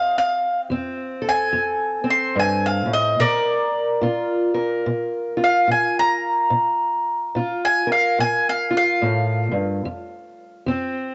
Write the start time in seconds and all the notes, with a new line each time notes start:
Already playing: F2 C4 F5
0.18 F5
0.70 F2 C4
1.22 A4
1.29 G#5
1.52 F2
2.04 C4
2.10 C6
2.35 G2
2.39 G#5
2.66 F5
2.86 A2
2.93 D#5
3.19 A#2 A#4 D5
4.01 A#2 F4
4.54 A#4
4.86 A#2
5.37 F4
5.44 F5
5.68 A#2 G#5
6.00 A#5
6.50 A#2
7.35 A#2 F4
7.65 G#5
7.87 A#4
7.92 F5
8.19 A#2 G#5
8.49 F5
8.71 F4
8.77 F5
9.02 A2
9.51 G2
9.85 F2
10.66 F2 C4